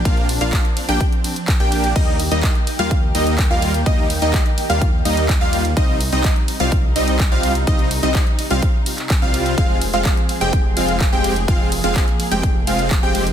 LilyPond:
<<
  \new Staff \with { instrumentName = "Digital synth lead" } { \time 4/4 \key ees \major \tempo 4 = 126 f''8 r16 f''8 r8 g''16 r4 r16 g''8. | ees''8 r16 ees''8 r8 f''16 r8 ees''8 r16 f''8 r16 | ees''8 r16 ees''8 r8 f''16 r8 ees''8 r16 f''8 r16 | ees''8 r16 ees''8 r8 f''16 r8 ees''8 r16 f''8 r16 |
ees''8 r16 ees''8 r8 f''16 r4 r16 f''8. | f''8 r16 f''8 r8 g''16 r8 f''8 r16 g''8 r16 | f''8 r16 f''8 r8 g''16 r8 f''8 r16 g''8 r16 | }
  \new Staff \with { instrumentName = "Supersaw synth" } { \time 4/4 \key ees \major <bes d' f'>8 r16 <bes d' f'>8 r8 <bes d' g'>16 r4 r16 <bes d' g'>8. | <g bes ees'>8 r16 <g bes ees'>8 r8 <g bes f'>16 r8 <g bes ees'>8 r16 <g bes f'>8 r16 | <g bes ees'>8 r16 <g bes ees'>8 r8 <g bes f'>16 r8 <g bes ees'>8 r16 <g bes f'>8 r16 | <g c' ees'>8 r16 <g c' ees'>8 r8 <g c' f'>16 r8 <g c' ees'>8 r16 <g c' f'>8 r16 |
<g c' ees'>8 r16 <g c' ees'>8 r8 <g c' f'>16 r4 r16 <g c' f'>8. | <aes c' f'>8 r16 <aes c' f'>8 r8 <aes c' g'>16 r8 <aes c' f'>8 r16 <aes c' g'>8 r16 | <aes c' f'>8 r16 <aes c' f'>8 r8 <aes c' g'>16 r8 <aes c' f'>8 r16 <aes c' g'>8 r16 | }
  \new Staff \with { instrumentName = "String section" } { \time 4/4 \key ees \major << { <f d'>1 | <ees g'>1~ | <ees g'>1 | <c ees'>1~ |
<c ees'>1 | <f aes'>1~ | <f aes'>1 | } \\ { c'1 | bes1~ | bes1 | g1~ |
g1 | c'1 | bes1 | } >> }
  \new Staff \with { instrumentName = "Detuned saw bass" } { \clef bass \time 4/4 \key ees \major bes,,8. bes,,8 r8 bes,,16 r4 r16 bes,,8. | ees,8. ees,8 r8 ees,8. ees,8. ees,8. | ees,8. ees,8 r8 ees,8. ees,8. ees,8. | c,8. c,8 r8 c,8. c,8. c,8. |
c,8. c,8 r8 c,16 r4 r16 c,8. | f,,8. f,,8 r8 f,,8. f,,8. f,,8. | f,,8. f,,8 r8 f,,8. f,,8. f,,8. | }
  \new DrumStaff \with { instrumentName = "Drums" } \drummode { \time 4/4 <hh bd cymr>16 hh16 <hho cymr>16 hh16 <hc hh bd cymr>16 hh16 <hho cymr>16 hh16 <hh bd cymr>16 hh16 <hho cymr>16 hh16 <hc hh bd cymr>16 hh16 <hho cymr>16 hh16 | <cymc hh bd cymr>8 <hho cymr>16 hh16 <hc hh bd cymr>16 hh16 <hho cymr>16 hh16 <hh bd cymr>8 <hho cymr>16 hh16 <hc hh bd cymr>8 <hho cymr>16 hh16 | <hh bd cymr>8 <hho cymr>16 hh16 <hc hh bd cymr>16 hh16 <hho cymr>16 hh16 <hh bd cymr>8 <hho cymr>16 hh16 <hc hh bd cymr>8 <hho cymr>16 hh16 | <hh bd cymr>8 <hho cymr>16 hh16 <hc hh bd cymr>16 hh16 <hho cymr>16 hh16 <hh bd cymr>8 <hho cymr>16 hh16 <hc hh bd cymr>8 <hho cymr>16 hh16 |
<hh bd cymr>16 hh16 <hho cymr>16 hh16 <hc hh bd cymr>16 hh16 <hho cymr>16 hh16 <hh bd cymr>8 <hho cymr>16 <hc hh>16 <hc hh bd cymr>8 <hho cymr>16 hh16 | <hh bd cymr>8 <hho cymr>16 hh16 <hc hh bd cymr>16 hh16 <hho cymr>16 hh16 <hh bd cymr>8 <hho cymr>16 hh16 <hc hh bd cymr>8 <hho cymr>16 hh16 | <hh bd cymr>8 <hho cymr>16 hh16 <hc hh bd cymr>16 hh16 <hho cymr>16 hh16 <hh bd cymr>8 <hho cymr>16 hh16 <hc hh bd cymr>8 <hho cymr>16 hh16 | }
>>